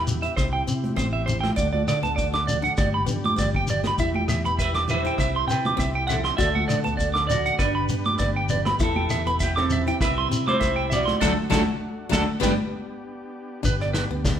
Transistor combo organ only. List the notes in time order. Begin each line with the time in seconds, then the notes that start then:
Already playing: B3 E4 G4
0.37 C4
1.57 A3 D4 F#4
2.77 G3 G4
3.99 E4
5.16 C4 E4
6.37 A3 D4 F#4
7.60 G4 B4
8.79 E4
10.01 G3 C4
11.21 A3 D4 F#4
12.43 B3 G4
13.63 B3 D4 G4